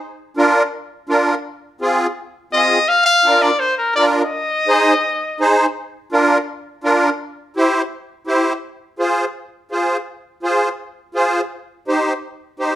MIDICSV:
0, 0, Header, 1, 3, 480
1, 0, Start_track
1, 0, Tempo, 359497
1, 21, Time_signature, 4, 2, 24, 8
1, 17029, End_track
2, 0, Start_track
2, 0, Title_t, "Trumpet"
2, 0, Program_c, 0, 56
2, 3373, Note_on_c, 0, 75, 99
2, 3853, Note_on_c, 0, 77, 107
2, 3873, Note_off_c, 0, 75, 0
2, 4076, Note_off_c, 0, 77, 0
2, 4084, Note_on_c, 0, 77, 108
2, 4566, Note_on_c, 0, 74, 96
2, 4586, Note_off_c, 0, 77, 0
2, 4798, Note_on_c, 0, 72, 93
2, 4818, Note_off_c, 0, 74, 0
2, 5035, Note_off_c, 0, 72, 0
2, 5043, Note_on_c, 0, 70, 87
2, 5278, Note_off_c, 0, 70, 0
2, 5286, Note_on_c, 0, 74, 91
2, 5399, Note_off_c, 0, 74, 0
2, 5522, Note_on_c, 0, 75, 90
2, 7400, Note_off_c, 0, 75, 0
2, 17029, End_track
3, 0, Start_track
3, 0, Title_t, "Accordion"
3, 0, Program_c, 1, 21
3, 494, Note_on_c, 1, 62, 86
3, 502, Note_on_c, 1, 65, 87
3, 506, Note_on_c, 1, 70, 103
3, 835, Note_off_c, 1, 62, 0
3, 838, Note_off_c, 1, 65, 0
3, 841, Note_off_c, 1, 70, 0
3, 1459, Note_on_c, 1, 62, 88
3, 1461, Note_on_c, 1, 65, 79
3, 1471, Note_on_c, 1, 70, 94
3, 1798, Note_off_c, 1, 62, 0
3, 1799, Note_off_c, 1, 65, 0
3, 1804, Note_off_c, 1, 70, 0
3, 2413, Note_on_c, 1, 60, 87
3, 2422, Note_on_c, 1, 65, 85
3, 2429, Note_on_c, 1, 68, 98
3, 2755, Note_off_c, 1, 60, 0
3, 2760, Note_off_c, 1, 65, 0
3, 2763, Note_off_c, 1, 68, 0
3, 3377, Note_on_c, 1, 60, 73
3, 3381, Note_on_c, 1, 65, 65
3, 3384, Note_on_c, 1, 68, 78
3, 3718, Note_off_c, 1, 60, 0
3, 3720, Note_off_c, 1, 65, 0
3, 3721, Note_off_c, 1, 68, 0
3, 4331, Note_on_c, 1, 62, 77
3, 4336, Note_on_c, 1, 65, 71
3, 4343, Note_on_c, 1, 70, 86
3, 4675, Note_off_c, 1, 62, 0
3, 4678, Note_off_c, 1, 65, 0
3, 4681, Note_off_c, 1, 70, 0
3, 5290, Note_on_c, 1, 62, 75
3, 5300, Note_on_c, 1, 65, 65
3, 5312, Note_on_c, 1, 70, 83
3, 5635, Note_off_c, 1, 62, 0
3, 5640, Note_off_c, 1, 65, 0
3, 5645, Note_off_c, 1, 70, 0
3, 6243, Note_on_c, 1, 63, 91
3, 6251, Note_on_c, 1, 68, 84
3, 6252, Note_on_c, 1, 72, 97
3, 6591, Note_off_c, 1, 63, 0
3, 6595, Note_off_c, 1, 68, 0
3, 6595, Note_off_c, 1, 72, 0
3, 7213, Note_on_c, 1, 63, 84
3, 7217, Note_on_c, 1, 68, 83
3, 7219, Note_on_c, 1, 72, 97
3, 7555, Note_off_c, 1, 63, 0
3, 7558, Note_off_c, 1, 68, 0
3, 7558, Note_off_c, 1, 72, 0
3, 8175, Note_on_c, 1, 62, 93
3, 8177, Note_on_c, 1, 65, 83
3, 8190, Note_on_c, 1, 70, 102
3, 8516, Note_off_c, 1, 62, 0
3, 8517, Note_off_c, 1, 65, 0
3, 8523, Note_off_c, 1, 70, 0
3, 9131, Note_on_c, 1, 62, 91
3, 9134, Note_on_c, 1, 65, 82
3, 9143, Note_on_c, 1, 70, 101
3, 9473, Note_off_c, 1, 62, 0
3, 9475, Note_off_c, 1, 65, 0
3, 9479, Note_off_c, 1, 70, 0
3, 10102, Note_on_c, 1, 64, 92
3, 10109, Note_on_c, 1, 67, 83
3, 10117, Note_on_c, 1, 72, 99
3, 10438, Note_off_c, 1, 64, 0
3, 10442, Note_off_c, 1, 67, 0
3, 10446, Note_off_c, 1, 72, 0
3, 11043, Note_on_c, 1, 64, 86
3, 11047, Note_on_c, 1, 67, 78
3, 11052, Note_on_c, 1, 72, 93
3, 11388, Note_off_c, 1, 64, 0
3, 11391, Note_off_c, 1, 67, 0
3, 11393, Note_off_c, 1, 72, 0
3, 12002, Note_on_c, 1, 65, 73
3, 12007, Note_on_c, 1, 68, 67
3, 12014, Note_on_c, 1, 72, 87
3, 12348, Note_off_c, 1, 65, 0
3, 12350, Note_off_c, 1, 68, 0
3, 12354, Note_off_c, 1, 72, 0
3, 12969, Note_on_c, 1, 65, 74
3, 12977, Note_on_c, 1, 68, 70
3, 12978, Note_on_c, 1, 72, 80
3, 13312, Note_off_c, 1, 65, 0
3, 13316, Note_off_c, 1, 68, 0
3, 13316, Note_off_c, 1, 72, 0
3, 13924, Note_on_c, 1, 65, 82
3, 13932, Note_on_c, 1, 68, 73
3, 13934, Note_on_c, 1, 72, 85
3, 14270, Note_off_c, 1, 65, 0
3, 14273, Note_off_c, 1, 68, 0
3, 14275, Note_off_c, 1, 72, 0
3, 14884, Note_on_c, 1, 65, 70
3, 14896, Note_on_c, 1, 68, 71
3, 14899, Note_on_c, 1, 72, 88
3, 15229, Note_off_c, 1, 65, 0
3, 15236, Note_off_c, 1, 68, 0
3, 15237, Note_off_c, 1, 72, 0
3, 15860, Note_on_c, 1, 63, 75
3, 15862, Note_on_c, 1, 67, 73
3, 15867, Note_on_c, 1, 72, 87
3, 16197, Note_off_c, 1, 63, 0
3, 16198, Note_off_c, 1, 67, 0
3, 16201, Note_off_c, 1, 72, 0
3, 16816, Note_on_c, 1, 67, 68
3, 16817, Note_on_c, 1, 63, 77
3, 16826, Note_on_c, 1, 72, 80
3, 17029, Note_off_c, 1, 63, 0
3, 17029, Note_off_c, 1, 67, 0
3, 17029, Note_off_c, 1, 72, 0
3, 17029, End_track
0, 0, End_of_file